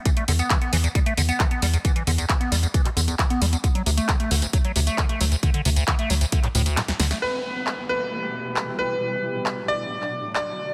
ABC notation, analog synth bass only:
X:1
M:4/4
L:1/8
Q:1/4=134
K:Em
V:1 name="Analog synth bass" clef=bass
z E,, z E,, z E,, z E,, | z E,, z E,, z E,, z E,, | z D,, z D,, z D,, z D,, | z D,, z D,, z D,, z D,, |
z8 | z8 |]